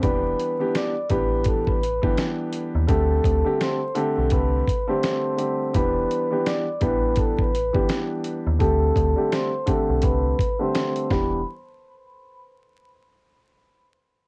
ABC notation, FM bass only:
X:1
M:4/4
L:1/16
Q:"Swing 16ths" 1/4=84
K:Em
V:1 name="FM bass" clef=bass
E,,,2 z4 A,,,4- A,,, G,,, z3 ^D,, | D,,2 D,, z4 B,,, C,,2 z6 | E,,,2 z4 A,,,4- A,,, G,,, z3 ^D,, | D,,2 D,, z4 B,,, C,,2 z4 E,,,2 |
z16 |]